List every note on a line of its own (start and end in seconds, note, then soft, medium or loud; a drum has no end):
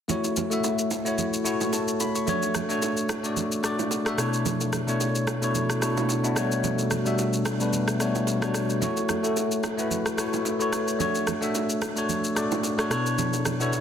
0.08 0.42 A3 medium
0.08 0.42 E4 medium
0.08 0.43 F#4 medium
0.08 0.43 C#5 medium
0.08 low conga medium
0.08 shaker medium
0.24 high bongo soft
0.24 shaker soft
0.36 low bongo medium
0.36 low conga medium
0.36 shaker medium
0.50 0.93 A3 medium
0.50 0.94 E4 medium
0.50 0.94 F#4 medium
0.50 0.95 E5 medium
0.50 shaker soft
0.64 high bongo medium
0.64 shaker medium
0.79 shaker medium
0.91 low bongo medium
0.91 shaker medium
1.05 1.38 A3 medium
1.05 1.38 E4 medium
1.05 1.39 F#4 medium
1.05 1.39 C#5 medium
1.05 shaker medium
1.18 low conga medium
1.18 shaker medium
1.33 shaker medium
1.45 1.78 A3 medium
1.45 1.79 E4 medium
1.45 1.79 F#4 medium
1.45 1.80 C#5 medium
1.45 shaker loud
1.61 low bongo medium
1.61 shaker soft
1.73 1.99 A5 medium
1.73 high bongo medium
1.73 shaker medium
1.88 shaker soft
2.00 2.15 B5 medium
2.00 high bongo medium
2.00 shaker loud
2.15 2.41 C#6 medium
2.15 shaker soft
2.26 2.60 A3 medium
2.26 2.61 D4 medium
2.26 2.61 F#4 medium
2.26 2.62 C#5 medium
2.26 low conga medium
2.26 shaker medium
2.42 high bongo soft
2.42 shaker soft
2.55 cross-stick medium
2.55 low bongo soft
2.55 low conga medium
2.55 shaker medium
2.69 3.12 A3 medium
2.69 3.12 D4 medium
2.69 3.13 F#4 medium
2.69 3.13 C#5 medium
2.69 shaker soft
2.82 high bongo medium
2.82 shaker medium
2.97 shaker medium
3.09 cross-stick medium
3.09 low bongo medium
3.09 shaker medium
3.23 3.56 A3 medium
3.23 3.56 D4 medium
3.23 3.57 F#4 medium
3.23 3.57 D5 medium
3.23 shaker medium
3.37 low conga medium
3.37 shaker medium
3.52 shaker medium
3.63 3.97 A3 medium
3.63 3.97 D4 medium
3.63 3.97 F#4 medium
3.63 3.98 D5 medium
3.63 cross-stick medium
3.63 shaker loud
3.79 low bongo medium
3.79 shaker soft
3.91 high bongo medium
3.91 shaker medium
4.05 4.17 A3 medium
4.05 4.18 D4 medium
4.05 4.19 F#4 medium
4.05 4.19 E5 medium
4.05 cross-stick medium
4.05 shaker soft
4.17 4.72 B2 medium
4.17 4.73 A3 medium
4.17 4.73 D4 medium
4.17 4.73 E4 medium
4.17 4.74 C#5 medium
4.17 cross-stick medium
4.17 high bongo medium
4.17 shaker loud
4.33 shaker soft
4.46 low conga medium
4.46 shaker medium
4.61 high bongo soft
4.61 shaker soft
4.73 cross-stick medium
4.73 low bongo soft
4.73 low conga medium
4.73 shaker medium
4.87 5.30 B2 medium
4.87 5.30 A3 medium
4.87 5.31 D4 medium
4.87 5.31 E4 medium
4.87 5.31 C#5 medium
4.87 shaker soft
5.00 high bongo medium
5.00 shaker medium
5.15 shaker medium
5.27 cross-stick medium
5.27 low bongo medium
5.27 shaker medium
5.41 5.74 B2 medium
5.41 5.74 A3 medium
5.41 5.75 D4 medium
5.41 5.75 E4 medium
5.41 5.75 C#5 medium
5.41 shaker medium
5.55 low conga medium
5.55 shaker medium
5.70 cross-stick medium
5.70 shaker medium
5.81 6.15 B2 medium
5.81 6.15 A3 medium
5.81 6.15 D4 medium
5.81 6.16 E4 medium
5.81 6.16 C#5 medium
5.81 cross-stick medium
5.81 shaker loud
5.97 low bongo medium
5.97 shaker soft
6.09 high bongo medium
6.09 shaker medium
6.23 6.34 B2 medium
6.23 6.35 A3 medium
6.23 6.36 D4 medium
6.23 6.37 E4 medium
6.23 6.36 F#4 medium
6.23 shaker soft
6.35 6.90 B2 medium
6.35 6.91 G3 medium
6.35 6.91 A3 medium
6.35 6.91 D4 medium
6.35 6.91 F#4 medium
6.35 6.92 C#5 medium
6.35 cross-stick medium
6.35 high bongo medium
6.35 shaker loud
6.52 shaker soft
6.64 low conga medium
6.64 shaker medium
6.79 high bongo soft
6.79 shaker soft
6.91 cross-stick medium
6.91 low bongo soft
6.91 low conga medium
6.91 shaker medium
7.05 7.48 B2 medium
7.05 7.48 G3 medium
7.05 7.48 A3 medium
7.05 7.49 D4 medium
7.05 7.49 F#4 medium
7.05 7.49 E5 medium
7.05 shaker soft
7.18 high bongo medium
7.18 shaker medium
7.33 shaker medium
7.45 cross-stick loud
7.45 low bongo medium
7.45 shaker medium
7.59 7.92 B2 medium
7.59 7.92 G3 medium
7.59 7.93 A3 medium
7.59 7.93 D4 medium
7.59 7.93 F#4 medium
7.59 7.94 B4 medium
7.59 shaker medium
7.73 low conga medium
7.73 shaker medium
7.88 cross-stick medium
7.88 shaker medium
7.99 8.33 B2 medium
7.99 8.33 G3 medium
7.99 8.33 A3 medium
7.99 8.34 D4 medium
7.99 8.34 F#4 medium
7.99 8.34 C#5 loud
7.99 cross-stick medium
7.99 shaker loud
8.15 low bongo medium
8.15 shaker soft
8.27 high bongo medium
8.27 shaker medium
8.41 8.74 B2 medium
8.41 8.74 G3 medium
8.41 8.74 A3 medium
8.41 8.75 D4 medium
8.41 8.75 F#4 medium
8.41 8.75 C#5 medium
8.41 cross-stick medium
8.41 shaker soft
8.54 cross-stick medium
8.54 high bongo medium
8.54 shaker loud
8.70 shaker soft
8.81 9.15 A3 medium
8.81 9.15 E4 medium
8.81 9.15 F#4 medium
8.81 9.16 C#5 medium
8.81 low conga medium
8.81 shaker medium
8.97 high bongo soft
8.97 shaker soft
9.09 cross-stick medium
9.09 low bongo soft
9.09 low conga medium
9.09 shaker medium
9.23 9.66 A3 medium
9.23 9.67 E4 medium
9.23 9.67 F#4 medium
9.23 9.67 A4 medium
9.23 shaker soft
9.37 high bongo medium
9.37 shaker medium
9.51 shaker medium
9.63 cross-stick loud
9.63 low bongo medium
9.63 shaker medium
9.77 10.10 A3 medium
9.77 10.11 E4 medium
9.77 10.11 F#4 medium
9.77 10.12 B4 medium
9.77 shaker medium
9.91 low conga medium
9.91 shaker medium
10.06 cross-stick medium
10.06 shaker medium
10.17 10.51 A3 medium
10.17 10.51 E4 medium
10.17 10.52 F#4 medium
10.17 10.52 C#5 medium
10.17 cross-stick medium
10.17 shaker loud
10.33 low bongo medium
10.33 shaker soft
10.45 high bongo medium
10.45 shaker medium
10.59 10.92 A3 medium
10.59 10.92 E4 medium
10.59 10.93 F#4 medium
10.59 10.93 C#5 medium
10.59 shaker soft
10.73 cross-stick medium
10.73 high bongo medium
10.73 shaker loud
10.88 shaker medium
10.99 11.33 A3 medium
10.99 11.33 D4 medium
10.99 11.34 F#4 medium
10.99 11.34 C#5 medium
10.99 low conga medium
10.99 shaker medium
11.15 high bongo soft
11.15 shaker soft
11.27 cross-stick medium
11.27 low bongo soft
11.27 low conga medium
11.27 shaker medium
11.41 11.84 A3 medium
11.41 11.85 D4 medium
11.41 11.85 F#4 medium
11.41 11.86 E5 medium
11.41 shaker soft
11.55 high bongo medium
11.55 shaker medium
11.70 shaker medium
11.82 cross-stick loud
11.82 low bongo medium
11.82 shaker medium
11.96 12.28 A3 medium
11.96 12.29 D4 medium
11.96 12.29 F#4 medium
11.96 12.30 C#5 medium
11.96 shaker medium
12.09 low conga medium
12.09 shaker medium
12.24 shaker medium
12.35 12.69 A3 medium
12.35 12.70 D4 medium
12.35 12.70 F#4 medium
12.35 12.70 D5 loud
12.35 cross-stick medium
12.35 shaker loud
12.51 low bongo medium
12.51 shaker soft
12.63 high bongo medium
12.63 shaker medium
12.78 12.90 A3 medium
12.78 12.90 D4 medium
12.78 12.91 F#4 medium
12.78 12.91 C#5 medium
12.78 cross-stick medium
12.78 shaker soft
12.90 13.45 B2 medium
12.90 13.45 B3 medium
12.90 13.46 D4 medium
12.90 13.46 E4 medium
12.90 13.46 A4 medium
12.90 13.46 C#5 medium
12.90 cross-stick medium
12.90 high bongo medium
12.90 shaker loud
13.06 shaker soft
13.18 low conga medium
13.18 shaker medium
13.33 high bongo soft
13.33 shaker soft
13.45 cross-stick medium
13.45 low bongo soft
13.45 low conga medium
13.45 shaker medium
13.60 13.80 B2 medium
13.60 13.80 B3 medium
13.60 13.80 D4 medium
13.60 13.80 E4 medium
13.60 13.80 A4 medium
13.60 13.80 C#5 medium
13.60 shaker soft
13.73 high bongo medium
13.73 shaker medium